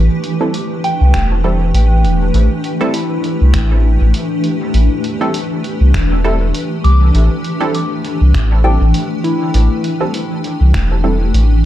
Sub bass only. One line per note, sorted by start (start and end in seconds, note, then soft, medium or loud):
1.01 1.13 C2 medium
1.14 1.72 E1 medium
1.74 2.06 A1 medium
2.04 2.31 E1 medium
2.34 2.48 A1 loud
3.41 3.53 C2 medium
3.54 3.98 A1 medium
4.01 4.13 A1 loud
4.74 4.89 A1 loud
5.81 5.93 C2 medium
5.94 6.52 E1 loud
6.84 7.11 C2 medium
7.14 7.29 A1 loud
8.21 8.33 C2 medium
8.34 8.78 A1 medium
8.81 8.93 A1 loud
9.54 9.69 A1 loud
10.61 10.73 C2 medium
10.74 11.31 E1 loud
11.34 11.65 A1 medium